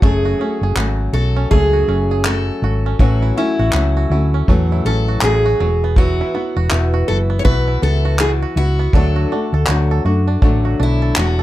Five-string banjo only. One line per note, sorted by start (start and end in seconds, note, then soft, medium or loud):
0.00 0.03 A3 medium
0.00 1.50 A3 medium
0.00 0.12 D4 medium
0.25 0.78 F#4 medium
0.41 1.36 C#4 medium
0.63 0.77 G#4 medium
0.78 1.14 F#4 medium
1.14 1.73 F#4 medium
1.36 1.88 C#4 medium
1.51 3.00 A3 medium
1.73 2.27 F#4 soft
1.89 2.86 C#4 medium
2.11 2.48 G#4 medium
2.27 2.64 F#4 medium
2.64 3.25 F#4 medium
2.86 3.38 C#4 medium
3.00 4.48 F#3 medium
3.22 3.74 E4 medium
3.38 4.33 C#4 medium
3.59 3.96 F#4 medium
3.74 4.11 E4 medium
3.97 5.08 F#4 medium
4.12 4.72 E4 medium
4.34 4.85 C#4 medium
4.49 5.60 F#3 medium
4.72 5.08 E4 medium
4.87 5.69 C#4 medium
5.08 5.46 F#4 medium
5.24 5.45 E4 medium
5.46 6.24 F#4 medium
5.60 5.98 F#3 medium
5.84 6.34 B3 medium
5.98 7.44 F#3 medium
6.21 6.70 E4 medium
6.35 7.29 B3 medium
6.57 6.93 F#4 medium
6.72 7.07 E4 medium
6.94 8.05 F#4 medium
7.08 7.66 E4 medium
7.30 7.81 B3 medium
7.45 8.93 F#3 medium
7.68 8.20 E4 medium
7.82 8.78 B3 medium
8.05 8.42 F#4 medium
8.21 8.56 E4 medium
8.42 9.16 F#4 medium
8.57 9.03 E4 medium
8.79 9.03 B3 medium
8.94 10.41 D3 medium
9.16 9.69 F#4 medium
9.32 10.26 D4 medium
9.54 9.68 A4 medium
9.69 9.91 F#4 medium
9.91 10.05 A4 medium
10.06 10.65 F#4 medium
10.28 10.78 D4 soft
10.42 11.43 D3 medium
10.65 11.18 F#4 soft
10.80 11.43 D4 medium
11.02 11.17 A4 medium
11.18 11.39 F#4 medium
11.39 11.43 A4 medium